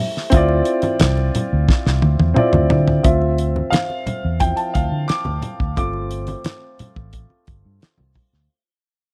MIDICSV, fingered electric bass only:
0, 0, Header, 1, 3, 480
1, 0, Start_track
1, 0, Key_signature, -1, "minor"
1, 0, Tempo, 680272
1, 231, Time_signature, 4, 2, 24, 8
1, 6444, End_track
2, 0, Start_track
2, 0, Title_t, "Fingered electric bass"
2, 0, Program_c, 0, 33
2, 233, Note_on_c, 0, 38, 107
2, 428, Note_off_c, 0, 38, 0
2, 719, Note_on_c, 0, 36, 87
2, 911, Note_off_c, 0, 36, 0
2, 1078, Note_on_c, 0, 38, 79
2, 1173, Note_off_c, 0, 38, 0
2, 1316, Note_on_c, 0, 36, 80
2, 1412, Note_off_c, 0, 36, 0
2, 1434, Note_on_c, 0, 38, 92
2, 1530, Note_off_c, 0, 38, 0
2, 1553, Note_on_c, 0, 40, 88
2, 1649, Note_off_c, 0, 40, 0
2, 1792, Note_on_c, 0, 38, 91
2, 1889, Note_off_c, 0, 38, 0
2, 1909, Note_on_c, 0, 50, 90
2, 2106, Note_off_c, 0, 50, 0
2, 2154, Note_on_c, 0, 38, 101
2, 2544, Note_off_c, 0, 38, 0
2, 2997, Note_on_c, 0, 40, 85
2, 3190, Note_off_c, 0, 40, 0
2, 3358, Note_on_c, 0, 38, 82
2, 3453, Note_off_c, 0, 38, 0
2, 3468, Note_on_c, 0, 50, 96
2, 3567, Note_off_c, 0, 50, 0
2, 3715, Note_on_c, 0, 38, 90
2, 3811, Note_off_c, 0, 38, 0
2, 3954, Note_on_c, 0, 38, 82
2, 4050, Note_off_c, 0, 38, 0
2, 4077, Note_on_c, 0, 31, 102
2, 4466, Note_off_c, 0, 31, 0
2, 4917, Note_on_c, 0, 33, 78
2, 5111, Note_off_c, 0, 33, 0
2, 5281, Note_on_c, 0, 31, 83
2, 5375, Note_off_c, 0, 31, 0
2, 5401, Note_on_c, 0, 43, 89
2, 5495, Note_off_c, 0, 43, 0
2, 5640, Note_on_c, 0, 36, 86
2, 5735, Note_off_c, 0, 36, 0
2, 5880, Note_on_c, 0, 38, 76
2, 5975, Note_off_c, 0, 38, 0
2, 6444, End_track
3, 0, Start_track
3, 0, Title_t, "Muted fingered electric bass strokes"
3, 1674, Note_on_c, 9, 29, 50
3, 1745, Note_off_c, 9, 29, 0
3, 2871, Note_on_c, 9, 29, 41
3, 2942, Note_off_c, 9, 29, 0
3, 3592, Note_on_c, 9, 29, 47
3, 3663, Note_off_c, 9, 29, 0
3, 4798, Note_on_c, 9, 29, 46
3, 4869, Note_off_c, 9, 29, 0
3, 6444, End_track
0, 0, End_of_file